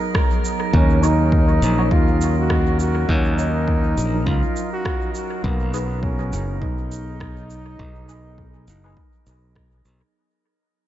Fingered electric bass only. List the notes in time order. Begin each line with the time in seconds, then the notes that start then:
0.73 D#2
1.62 A#1
1.91 D#2
3.09 D#2
3.98 A#1
4.26 C#2
5.44 B1
6.33 F#1
6.62 B1
7.79 B1
8.68 F#1
9.27 B1
9.85 B1